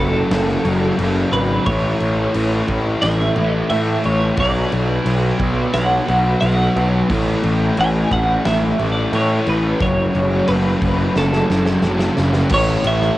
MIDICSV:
0, 0, Header, 1, 5, 480
1, 0, Start_track
1, 0, Key_signature, 3, "major"
1, 0, Tempo, 677966
1, 1179, Time_signature, 4, 2, 24, 8
1, 9331, End_track
2, 0, Start_track
2, 0, Title_t, "Clean electric guitar"
2, 0, Program_c, 0, 27
2, 0, Note_on_c, 0, 69, 78
2, 941, Note_on_c, 0, 71, 72
2, 976, Note_off_c, 0, 69, 0
2, 1174, Note_off_c, 0, 71, 0
2, 1177, Note_on_c, 0, 73, 89
2, 2134, Note_off_c, 0, 73, 0
2, 2137, Note_on_c, 0, 76, 94
2, 2512, Note_off_c, 0, 76, 0
2, 2512, Note_on_c, 0, 74, 94
2, 2610, Note_off_c, 0, 74, 0
2, 2618, Note_on_c, 0, 76, 110
2, 2866, Note_off_c, 0, 76, 0
2, 2872, Note_on_c, 0, 73, 82
2, 3112, Note_off_c, 0, 73, 0
2, 3115, Note_on_c, 0, 74, 98
2, 4060, Note_off_c, 0, 74, 0
2, 4062, Note_on_c, 0, 78, 105
2, 4527, Note_off_c, 0, 78, 0
2, 4536, Note_on_c, 0, 78, 93
2, 4873, Note_off_c, 0, 78, 0
2, 5527, Note_on_c, 0, 80, 109
2, 5751, Note_off_c, 0, 80, 0
2, 5754, Note_on_c, 0, 78, 102
2, 5981, Note_off_c, 0, 78, 0
2, 5984, Note_on_c, 0, 76, 87
2, 6281, Note_off_c, 0, 76, 0
2, 6316, Note_on_c, 0, 74, 78
2, 6474, Note_off_c, 0, 74, 0
2, 6479, Note_on_c, 0, 73, 99
2, 6695, Note_off_c, 0, 73, 0
2, 6722, Note_on_c, 0, 71, 75
2, 6955, Note_on_c, 0, 73, 92
2, 6959, Note_off_c, 0, 71, 0
2, 7424, Note_on_c, 0, 71, 91
2, 7443, Note_off_c, 0, 73, 0
2, 7910, Note_off_c, 0, 71, 0
2, 7913, Note_on_c, 0, 69, 67
2, 8599, Note_off_c, 0, 69, 0
2, 8878, Note_on_c, 0, 73, 90
2, 9109, Note_off_c, 0, 73, 0
2, 9112, Note_on_c, 0, 76, 106
2, 9330, Note_off_c, 0, 76, 0
2, 9331, End_track
3, 0, Start_track
3, 0, Title_t, "Distorted electric guitar"
3, 0, Program_c, 1, 30
3, 0, Note_on_c, 1, 42, 79
3, 0, Note_on_c, 1, 49, 97
3, 0, Note_on_c, 1, 54, 100
3, 0, Note_on_c, 1, 57, 89
3, 443, Note_off_c, 1, 42, 0
3, 449, Note_off_c, 1, 49, 0
3, 449, Note_off_c, 1, 54, 0
3, 458, Note_on_c, 1, 54, 74
3, 467, Note_on_c, 1, 49, 66
3, 476, Note_on_c, 1, 42, 62
3, 684, Note_off_c, 1, 54, 0
3, 689, Note_off_c, 1, 49, 0
3, 693, Note_off_c, 1, 42, 0
3, 701, Note_on_c, 1, 42, 79
3, 710, Note_on_c, 1, 49, 86
3, 721, Note_on_c, 1, 54, 89
3, 1165, Note_off_c, 1, 42, 0
3, 1170, Note_off_c, 1, 49, 0
3, 1176, Note_off_c, 1, 54, 0
3, 1182, Note_on_c, 1, 45, 93
3, 1192, Note_on_c, 1, 52, 92
3, 1197, Note_off_c, 1, 57, 0
3, 1200, Note_on_c, 1, 57, 95
3, 2367, Note_off_c, 1, 45, 0
3, 2372, Note_off_c, 1, 52, 0
3, 2381, Note_off_c, 1, 57, 0
3, 2384, Note_on_c, 1, 57, 83
3, 2394, Note_on_c, 1, 52, 80
3, 2401, Note_on_c, 1, 45, 72
3, 2612, Note_off_c, 1, 52, 0
3, 2616, Note_off_c, 1, 45, 0
3, 2624, Note_on_c, 1, 45, 82
3, 2634, Note_on_c, 1, 52, 75
3, 2639, Note_off_c, 1, 57, 0
3, 2641, Note_on_c, 1, 57, 83
3, 3088, Note_off_c, 1, 45, 0
3, 3093, Note_off_c, 1, 52, 0
3, 3096, Note_on_c, 1, 47, 91
3, 3105, Note_on_c, 1, 54, 101
3, 3111, Note_off_c, 1, 57, 0
3, 3114, Note_on_c, 1, 59, 86
3, 4285, Note_off_c, 1, 47, 0
3, 4288, Note_off_c, 1, 59, 0
3, 4289, Note_off_c, 1, 54, 0
3, 4297, Note_on_c, 1, 59, 76
3, 4312, Note_on_c, 1, 54, 76
3, 4316, Note_on_c, 1, 47, 65
3, 4525, Note_off_c, 1, 59, 0
3, 4527, Note_off_c, 1, 47, 0
3, 4532, Note_off_c, 1, 54, 0
3, 4536, Note_on_c, 1, 47, 72
3, 4546, Note_on_c, 1, 54, 81
3, 4555, Note_on_c, 1, 59, 77
3, 5004, Note_off_c, 1, 47, 0
3, 5009, Note_off_c, 1, 54, 0
3, 5014, Note_off_c, 1, 59, 0
3, 5021, Note_on_c, 1, 45, 84
3, 5031, Note_on_c, 1, 52, 94
3, 5039, Note_on_c, 1, 57, 98
3, 6208, Note_off_c, 1, 45, 0
3, 6217, Note_off_c, 1, 57, 0
3, 6220, Note_on_c, 1, 57, 85
3, 6227, Note_off_c, 1, 52, 0
3, 6230, Note_on_c, 1, 52, 71
3, 6240, Note_on_c, 1, 45, 59
3, 6456, Note_off_c, 1, 45, 0
3, 6464, Note_on_c, 1, 45, 79
3, 6471, Note_off_c, 1, 52, 0
3, 6474, Note_on_c, 1, 52, 87
3, 6479, Note_off_c, 1, 57, 0
3, 6482, Note_on_c, 1, 57, 81
3, 6929, Note_off_c, 1, 45, 0
3, 6941, Note_on_c, 1, 42, 81
3, 6949, Note_on_c, 1, 49, 85
3, 6953, Note_off_c, 1, 52, 0
3, 6956, Note_on_c, 1, 54, 88
3, 8127, Note_off_c, 1, 42, 0
3, 8132, Note_off_c, 1, 49, 0
3, 8133, Note_off_c, 1, 54, 0
3, 8142, Note_on_c, 1, 54, 78
3, 8154, Note_on_c, 1, 49, 76
3, 8161, Note_on_c, 1, 42, 57
3, 8368, Note_off_c, 1, 54, 0
3, 8374, Note_off_c, 1, 49, 0
3, 8376, Note_off_c, 1, 42, 0
3, 8384, Note_on_c, 1, 42, 81
3, 8394, Note_on_c, 1, 49, 72
3, 8402, Note_on_c, 1, 54, 84
3, 8849, Note_off_c, 1, 42, 0
3, 8853, Note_off_c, 1, 49, 0
3, 8858, Note_off_c, 1, 54, 0
3, 8862, Note_on_c, 1, 45, 96
3, 8873, Note_on_c, 1, 52, 91
3, 8876, Note_off_c, 1, 57, 0
3, 8878, Note_on_c, 1, 57, 93
3, 9331, Note_off_c, 1, 45, 0
3, 9331, Note_off_c, 1, 52, 0
3, 9331, Note_off_c, 1, 57, 0
3, 9331, End_track
4, 0, Start_track
4, 0, Title_t, "Picked electric bass"
4, 0, Program_c, 2, 34
4, 0, Note_on_c, 2, 30, 90
4, 161, Note_off_c, 2, 30, 0
4, 218, Note_on_c, 2, 30, 89
4, 400, Note_off_c, 2, 30, 0
4, 460, Note_on_c, 2, 30, 79
4, 641, Note_off_c, 2, 30, 0
4, 696, Note_on_c, 2, 30, 83
4, 879, Note_off_c, 2, 30, 0
4, 934, Note_on_c, 2, 32, 81
4, 1117, Note_off_c, 2, 32, 0
4, 1179, Note_on_c, 2, 33, 87
4, 1360, Note_off_c, 2, 33, 0
4, 1421, Note_on_c, 2, 33, 74
4, 1601, Note_off_c, 2, 33, 0
4, 1665, Note_on_c, 2, 33, 87
4, 1844, Note_off_c, 2, 33, 0
4, 1902, Note_on_c, 2, 33, 82
4, 2082, Note_off_c, 2, 33, 0
4, 2144, Note_on_c, 2, 33, 98
4, 2323, Note_off_c, 2, 33, 0
4, 2380, Note_on_c, 2, 33, 82
4, 2561, Note_off_c, 2, 33, 0
4, 2625, Note_on_c, 2, 45, 86
4, 2804, Note_off_c, 2, 45, 0
4, 2869, Note_on_c, 2, 33, 80
4, 3047, Note_off_c, 2, 33, 0
4, 3101, Note_on_c, 2, 35, 79
4, 3282, Note_off_c, 2, 35, 0
4, 3346, Note_on_c, 2, 35, 81
4, 3525, Note_off_c, 2, 35, 0
4, 3580, Note_on_c, 2, 35, 85
4, 3761, Note_off_c, 2, 35, 0
4, 3820, Note_on_c, 2, 35, 89
4, 4001, Note_off_c, 2, 35, 0
4, 4064, Note_on_c, 2, 35, 80
4, 4244, Note_off_c, 2, 35, 0
4, 4308, Note_on_c, 2, 35, 77
4, 4487, Note_off_c, 2, 35, 0
4, 4544, Note_on_c, 2, 35, 79
4, 4725, Note_off_c, 2, 35, 0
4, 4787, Note_on_c, 2, 35, 96
4, 4966, Note_off_c, 2, 35, 0
4, 5027, Note_on_c, 2, 33, 86
4, 5207, Note_off_c, 2, 33, 0
4, 5267, Note_on_c, 2, 33, 85
4, 5447, Note_off_c, 2, 33, 0
4, 5508, Note_on_c, 2, 33, 92
4, 5687, Note_off_c, 2, 33, 0
4, 5742, Note_on_c, 2, 33, 85
4, 5924, Note_off_c, 2, 33, 0
4, 5988, Note_on_c, 2, 33, 98
4, 6167, Note_off_c, 2, 33, 0
4, 6228, Note_on_c, 2, 33, 83
4, 6407, Note_off_c, 2, 33, 0
4, 6463, Note_on_c, 2, 45, 89
4, 6645, Note_off_c, 2, 45, 0
4, 6709, Note_on_c, 2, 33, 88
4, 6888, Note_off_c, 2, 33, 0
4, 6942, Note_on_c, 2, 30, 82
4, 7124, Note_off_c, 2, 30, 0
4, 7187, Note_on_c, 2, 30, 90
4, 7367, Note_off_c, 2, 30, 0
4, 7426, Note_on_c, 2, 30, 95
4, 7606, Note_off_c, 2, 30, 0
4, 7659, Note_on_c, 2, 30, 72
4, 7842, Note_off_c, 2, 30, 0
4, 7903, Note_on_c, 2, 30, 94
4, 8085, Note_off_c, 2, 30, 0
4, 8145, Note_on_c, 2, 30, 85
4, 8325, Note_off_c, 2, 30, 0
4, 8374, Note_on_c, 2, 30, 87
4, 8559, Note_off_c, 2, 30, 0
4, 8623, Note_on_c, 2, 30, 85
4, 8804, Note_off_c, 2, 30, 0
4, 8857, Note_on_c, 2, 33, 104
4, 9032, Note_off_c, 2, 33, 0
4, 9091, Note_on_c, 2, 33, 81
4, 9268, Note_off_c, 2, 33, 0
4, 9331, End_track
5, 0, Start_track
5, 0, Title_t, "Drums"
5, 221, Note_on_c, 9, 49, 78
5, 223, Note_on_c, 9, 38, 105
5, 292, Note_off_c, 9, 49, 0
5, 294, Note_off_c, 9, 38, 0
5, 347, Note_on_c, 9, 38, 29
5, 418, Note_off_c, 9, 38, 0
5, 459, Note_on_c, 9, 49, 58
5, 530, Note_off_c, 9, 49, 0
5, 698, Note_on_c, 9, 49, 76
5, 769, Note_off_c, 9, 49, 0
5, 939, Note_on_c, 9, 49, 59
5, 1009, Note_off_c, 9, 49, 0
5, 1176, Note_on_c, 9, 49, 87
5, 1179, Note_on_c, 9, 36, 123
5, 1247, Note_off_c, 9, 49, 0
5, 1250, Note_off_c, 9, 36, 0
5, 1418, Note_on_c, 9, 49, 57
5, 1489, Note_off_c, 9, 49, 0
5, 1658, Note_on_c, 9, 49, 70
5, 1729, Note_off_c, 9, 49, 0
5, 1897, Note_on_c, 9, 49, 54
5, 1900, Note_on_c, 9, 36, 75
5, 1968, Note_off_c, 9, 49, 0
5, 1971, Note_off_c, 9, 36, 0
5, 2141, Note_on_c, 9, 49, 65
5, 2144, Note_on_c, 9, 38, 111
5, 2212, Note_off_c, 9, 49, 0
5, 2214, Note_off_c, 9, 38, 0
5, 2262, Note_on_c, 9, 38, 29
5, 2332, Note_off_c, 9, 38, 0
5, 2376, Note_on_c, 9, 49, 47
5, 2447, Note_off_c, 9, 49, 0
5, 2618, Note_on_c, 9, 49, 72
5, 2689, Note_off_c, 9, 49, 0
5, 2859, Note_on_c, 9, 49, 51
5, 2930, Note_off_c, 9, 49, 0
5, 3095, Note_on_c, 9, 49, 84
5, 3098, Note_on_c, 9, 36, 124
5, 3166, Note_off_c, 9, 49, 0
5, 3169, Note_off_c, 9, 36, 0
5, 3342, Note_on_c, 9, 49, 57
5, 3413, Note_off_c, 9, 49, 0
5, 3580, Note_on_c, 9, 49, 77
5, 3651, Note_off_c, 9, 49, 0
5, 3821, Note_on_c, 9, 36, 87
5, 3821, Note_on_c, 9, 49, 54
5, 3892, Note_off_c, 9, 36, 0
5, 3892, Note_off_c, 9, 49, 0
5, 4061, Note_on_c, 9, 49, 74
5, 4063, Note_on_c, 9, 38, 97
5, 4131, Note_off_c, 9, 49, 0
5, 4134, Note_off_c, 9, 38, 0
5, 4306, Note_on_c, 9, 49, 53
5, 4377, Note_off_c, 9, 49, 0
5, 4545, Note_on_c, 9, 49, 72
5, 4616, Note_off_c, 9, 49, 0
5, 4788, Note_on_c, 9, 49, 50
5, 4859, Note_off_c, 9, 49, 0
5, 5025, Note_on_c, 9, 36, 122
5, 5026, Note_on_c, 9, 49, 81
5, 5095, Note_off_c, 9, 36, 0
5, 5097, Note_off_c, 9, 49, 0
5, 5263, Note_on_c, 9, 49, 58
5, 5334, Note_off_c, 9, 49, 0
5, 5502, Note_on_c, 9, 49, 72
5, 5572, Note_off_c, 9, 49, 0
5, 5745, Note_on_c, 9, 36, 88
5, 5745, Note_on_c, 9, 49, 53
5, 5815, Note_off_c, 9, 36, 0
5, 5816, Note_off_c, 9, 49, 0
5, 5983, Note_on_c, 9, 49, 74
5, 5985, Note_on_c, 9, 38, 113
5, 6054, Note_off_c, 9, 49, 0
5, 6056, Note_off_c, 9, 38, 0
5, 6226, Note_on_c, 9, 49, 55
5, 6296, Note_off_c, 9, 49, 0
5, 6465, Note_on_c, 9, 49, 68
5, 6536, Note_off_c, 9, 49, 0
5, 6702, Note_on_c, 9, 49, 51
5, 6773, Note_off_c, 9, 49, 0
5, 6941, Note_on_c, 9, 49, 72
5, 6943, Note_on_c, 9, 36, 115
5, 7012, Note_off_c, 9, 49, 0
5, 7014, Note_off_c, 9, 36, 0
5, 7185, Note_on_c, 9, 49, 62
5, 7256, Note_off_c, 9, 49, 0
5, 7417, Note_on_c, 9, 49, 73
5, 7488, Note_off_c, 9, 49, 0
5, 7659, Note_on_c, 9, 49, 55
5, 7660, Note_on_c, 9, 36, 91
5, 7730, Note_off_c, 9, 49, 0
5, 7731, Note_off_c, 9, 36, 0
5, 7901, Note_on_c, 9, 38, 67
5, 7972, Note_off_c, 9, 38, 0
5, 8021, Note_on_c, 9, 38, 54
5, 8092, Note_off_c, 9, 38, 0
5, 8142, Note_on_c, 9, 38, 67
5, 8213, Note_off_c, 9, 38, 0
5, 8253, Note_on_c, 9, 38, 66
5, 8324, Note_off_c, 9, 38, 0
5, 8371, Note_on_c, 9, 38, 83
5, 8442, Note_off_c, 9, 38, 0
5, 8491, Note_on_c, 9, 38, 73
5, 8561, Note_off_c, 9, 38, 0
5, 8615, Note_on_c, 9, 38, 82
5, 8686, Note_off_c, 9, 38, 0
5, 8733, Note_on_c, 9, 38, 93
5, 8804, Note_off_c, 9, 38, 0
5, 8846, Note_on_c, 9, 57, 127
5, 8854, Note_on_c, 9, 36, 127
5, 8917, Note_off_c, 9, 57, 0
5, 8925, Note_off_c, 9, 36, 0
5, 9092, Note_on_c, 9, 51, 96
5, 9163, Note_off_c, 9, 51, 0
5, 9217, Note_on_c, 9, 38, 35
5, 9287, Note_off_c, 9, 38, 0
5, 9331, End_track
0, 0, End_of_file